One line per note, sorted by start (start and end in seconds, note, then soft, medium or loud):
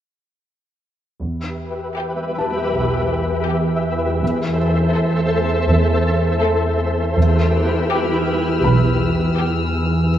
1.22 1.83 E2 soft
1.22 7.13 E2 medium
1.22 4.18 G4 soft
1.22 4.18 B4 soft
1.22 7.13 E5 soft
1.98 2.55 G4 soft
2.38 4.56 A5 soft
2.73 3.33 B1 soft
3.48 4.03 G4 soft
4.22 4.81 E2 soft
4.22 7.17 A4 soft
4.22 7.17 C5 soft
4.95 5.50 A4 soft
5.69 6.28 E2 soft
6.43 6.98 A4 soft
7.16 7.75 E2 soft
7.16 10.19 E2 medium
7.16 10.09 E4 soft
7.16 10.13 G4 soft
7.16 10.13 B4 soft
7.16 10.19 E6 soft
7.16 10.19 F6 soft
7.91 8.46 G4 soft
8.64 9.24 B1 medium
8.64 10.10 B4 soft
8.64 10.09 B5 soft
9.40 9.95 G4 soft